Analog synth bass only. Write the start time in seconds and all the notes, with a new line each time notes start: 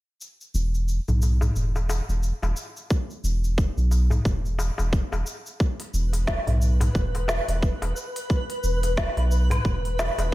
0.54 E1
1.08 B1
1.56 E1
2.09 E1
2.42 E1
3.24 E1
3.77 B1
4.25 E1
4.79 E1
5.12 E1
5.94 E1
6.47 B1
6.95 E1
7.48 E1
7.82 E1
8.63 E1
9.17 B1
9.65 E1
10.18 E1